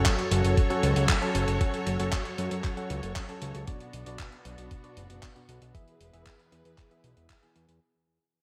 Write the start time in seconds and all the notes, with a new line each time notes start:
Already playing: F#3 C#4 F#4 A4 C#5 F#5
0.06 kick, clap, closed hi-hat
0.19 closed hi-hat
0.31 F#1 F#3 C#4 F#4 A4 F#5, closed hi-hat
0.44 F#1, closed hi-hat
0.57 kick, closed hi-hat
0.70 F#3 C#4 F#4 A4 F#5, closed hi-hat
0.83 C#2, closed hi-hat
0.96 C#2 F#3 C#4 F#4 A4 F#5, closed hi-hat
1.09 kick, clap, closed hi-hat
1.22 F#3 C#4 F#4 A4 A5, closed hi-hat
1.35 F#1, closed hi-hat
1.48 F#1, closed hi-hat
1.61 F#3 C#4 F#4 A4 F#5, kick, closed hi-hat
1.74 closed hi-hat
1.87 F#1, closed hi-hat
2.00 F#1 F#3 C#4 F#4 A4 F#5, closed hi-hat
2.12 kick, clap, closed hi-hat
2.25 closed hi-hat
2.38 F#2 F#3 C#4 F#4 A4 F#5, closed hi-hat
2.51 F#2, closed hi-hat
2.64 kick, clap, closed hi-hat
2.77 F#3 C#4 F#4 A4 F#5, closed hi-hat
2.90 C#2, closed hi-hat
3.03 F#1 F#3 C#4 F#4 A4 F#5, closed hi-hat
3.16 kick, clap, closed hi-hat
3.29 F#3 C#4 F#4 A4 A5, closed hi-hat
3.42 C#2, closed hi-hat
3.55 C#2, closed hi-hat
3.67 B2 B3 D4 F#4 D5, kick, closed hi-hat
3.80 closed hi-hat
3.93 B1, closed hi-hat
4.06 B1 B2 B3 D4 F#4 D5, closed hi-hat
4.19 kick, clap, closed hi-hat
4.32 closed hi-hat
4.45 B1 B2 B3 D4 F#4 D5, closed hi-hat
4.58 B1, closed hi-hat
4.71 kick, closed hi-hat
4.84 B2 B3 D4 F#4 D5, closed hi-hat
4.97 F#1, closed hi-hat
5.10 F#1 B2 B3 D4 F#4 D5, closed hi-hat
5.23 kick, clap, closed hi-hat
5.36 B2 B3 D4 F#4 F#5, closed hi-hat
5.49 B1, closed hi-hat
5.62 B1, closed hi-hat
5.74 E3 B3 E4 G#4 B4 E5, kick, closed hi-hat
5.88 closed hi-hat
6.01 E1, closed hi-hat
6.13 E1 E3 B3 E4 G#4 E5, closed hi-hat
6.26 kick, clap, closed hi-hat
6.39 closed hi-hat
6.52 E2 E3 B3 E4 G#4 E5, closed hi-hat
6.65 E2, closed hi-hat
6.78 kick, clap, closed hi-hat
6.91 E3 B3 E4 G#4 E5, closed hi-hat
7.04 B1, closed hi-hat
7.17 E1 E3 B3 E4 G#4 E5, closed hi-hat
7.30 kick, clap, closed hi-hat
7.43 E3 B3 E4 G#4 G#5, closed hi-hat
7.56 E2, closed hi-hat
7.69 E2, closed hi-hat